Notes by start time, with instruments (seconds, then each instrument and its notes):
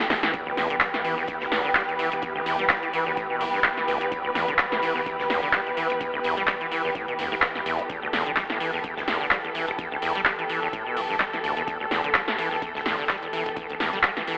Already playing: string section E3 B3 G4 A4
0.00 closed hi-hat
0.10 acid bass E2, snare, open hi-hat
0.23 acid bass E3, snare, closed hi-hat
0.33 analog synth bass E1, acid bass E2, string section B4, kick, closed hi-hat
0.46 acid bass D2
0.57 acid bass E2, snare, closed hi-hat, open hi-hat
0.70 analog synth bass B1, acid bass D3, closed hi-hat
0.80 acid bass G3, kick, snare, clap, closed hi-hat
0.93 analog synth bass E1, acid bass A2, snare, closed hi-hat
1.04 acid bass E3, closed hi-hat, open hi-hat
1.17 acid bass E2
1.27 acid bass E2, kick, closed hi-hat
1.40 analog synth bass A1, acid bass D2, snare
1.51 acid bass E2, snare, closed hi-hat, open hi-hat
1.65 analog synth bass E1, acid bass D3
1.75 acid bass G3, kick, snare, clap, closed hi-hat
1.88 acid bass E2, closed hi-hat
1.99 acid bass E3, closed hi-hat, open hi-hat
2.11 acid bass E1, closed hi-hat
2.22 analog synth bass E1, acid bass E2, kick, closed hi-hat
2.35 acid bass D2
2.46 acid bass E2, closed hi-hat, open hi-hat
2.59 analog synth bass B1, acid bass G3, snare, closed hi-hat
2.69 acid bass G3, kick, snare, clap, closed hi-hat
2.83 analog synth bass E1, acid bass E3, closed hi-hat
2.93 acid bass E3, closed hi-hat, open hi-hat
3.06 acid bass E2
3.17 acid bass A2, kick, closed hi-hat
3.30 acid bass B2
3.40 analog synth bass B1, acid bass A2, snare, closed hi-hat, open hi-hat
3.54 analog synth bass E1, acid bass G2
3.64 acid bass G3, kick, snare, clap, closed hi-hat
3.77 acid bass E3, snare, closed hi-hat
3.88 acid bass D2, closed hi-hat, open hi-hat
4.00 acid bass E2, closed hi-hat
4.12 analog synth bass E1, acid bass E2, kick, closed hi-hat
4.25 acid bass D2
4.35 acid bass E2, snare, closed hi-hat, open hi-hat
4.48 analog synth bass B1, acid bass D3, closed hi-hat
4.58 acid bass G3, kick, snare, clap, closed hi-hat
4.72 analog synth bass E1, acid bass A2, snare, closed hi-hat
4.82 acid bass E3, closed hi-hat, open hi-hat
4.96 acid bass E2
5.06 acid bass E2, kick, closed hi-hat
5.19 analog synth bass A1, acid bass D2, snare
5.30 acid bass E2, snare, closed hi-hat, open hi-hat
5.43 analog synth bass E1, acid bass D3
5.53 acid bass G3, kick, snare, clap, closed hi-hat
5.66 acid bass E2, closed hi-hat
5.77 acid bass E3, closed hi-hat, open hi-hat
5.90 acid bass E1, closed hi-hat
6.00 analog synth bass E1, acid bass E2, kick, closed hi-hat
6.14 acid bass D2
6.23 acid bass E2, closed hi-hat, open hi-hat
6.37 analog synth bass B1, acid bass G3, snare, closed hi-hat
6.47 acid bass G3, kick, snare, clap, closed hi-hat
6.61 analog synth bass E1, acid bass E3, closed hi-hat
6.71 acid bass E3, closed hi-hat, open hi-hat
6.85 acid bass E2
6.95 acid bass A2, kick, closed hi-hat
7.08 acid bass B2, closed hi-hat
7.19 acid bass D2, analog synth bass E2, snare, closed hi-hat, open hi-hat
7.32 acid bass A2
7.42 acid bass B2, kick, snare, clap, closed hi-hat
7.55 analog synth bass E1, acid bass E2, snare, closed hi-hat
7.66 acid bass E2, closed hi-hat, open hi-hat
7.79 acid bass B2, closed hi-hat
7.89 analog synth bass E1, acid bass E2, string section A4, kick, closed hi-hat
8.02 acid bass D2
8.13 acid bass E2, snare, closed hi-hat, open hi-hat
8.26 analog synth bass B1, acid bass D3, closed hi-hat
8.36 acid bass G3, kick, snare, clap, closed hi-hat
8.50 analog synth bass E1, acid bass A2, snare, closed hi-hat
8.60 acid bass E3, closed hi-hat, open hi-hat
8.73 acid bass E2
8.84 acid bass E2, kick, closed hi-hat
8.97 analog synth bass A1, acid bass D2, snare
9.08 acid bass E2, snare, closed hi-hat, open hi-hat
9.21 analog synth bass E1, acid bass D3
9.31 acid bass G3, kick, snare, clap, closed hi-hat
9.44 acid bass E2, closed hi-hat
9.54 acid bass E3, closed hi-hat, open hi-hat
9.68 acid bass E1, closed hi-hat
9.79 analog synth bass E1, acid bass E2, kick, closed hi-hat
9.92 acid bass D2
10.02 acid bass E2, closed hi-hat, open hi-hat
10.15 analog synth bass B1, acid bass G3, snare, closed hi-hat
10.25 acid bass G3, kick, snare, clap, closed hi-hat
10.39 analog synth bass E1, acid bass E3, closed hi-hat
10.49 acid bass E3, closed hi-hat, open hi-hat
10.62 acid bass E2
10.73 acid bass A2, kick, closed hi-hat
10.86 acid bass B2
10.96 analog synth bass B1, acid bass A2, snare, closed hi-hat, open hi-hat
11.10 analog synth bass E1, acid bass G2
11.20 acid bass G3, kick, snare, clap, closed hi-hat
11.33 acid bass E3, snare, closed hi-hat
11.44 acid bass D2, closed hi-hat, open hi-hat
11.57 acid bass E2, closed hi-hat
11.67 analog synth bass E1, acid bass E2, kick, closed hi-hat
11.80 acid bass D2
11.91 acid bass E2, snare, closed hi-hat, open hi-hat
12.04 analog synth bass B1, acid bass D3, closed hi-hat
12.14 acid bass G3, kick, snare, clap, closed hi-hat
12.28 analog synth bass E1, acid bass A2, snare, closed hi-hat
12.38 acid bass E3, closed hi-hat, open hi-hat
12.51 acid bass E2
12.62 acid bass E2, kick, closed hi-hat
12.75 analog synth bass A1, acid bass D2, snare
12.85 acid bass E2, snare, closed hi-hat, open hi-hat
12.99 analog synth bass E1, acid bass D3
13.09 acid bass G3, kick, snare, clap, closed hi-hat
13.22 acid bass E2, closed hi-hat
13.33 acid bass E3, closed hi-hat, open hi-hat
13.46 acid bass E1, closed hi-hat
13.56 analog synth bass E1, acid bass E2, kick, closed hi-hat
13.70 acid bass D2, closed hi-hat
13.80 acid bass E2, snare, closed hi-hat, open hi-hat
13.93 analog synth bass B1, acid bass G3, snare, closed hi-hat
14.03 acid bass G3, kick, snare, clap, closed hi-hat
14.17 analog synth bass E1, acid bass E3, snare, closed hi-hat
14.27 acid bass E3, closed hi-hat, open hi-hat